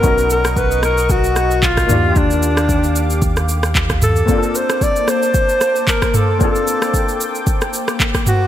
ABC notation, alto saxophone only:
X:1
M:4/4
L:1/8
Q:"Swing 16ths" 1/4=113
K:Bb
V:1 name="Alto saxophone"
B ^A =B A ^F2 =F2 | D4 z3 A- | A c d c3 B A | A4 z3 _G |]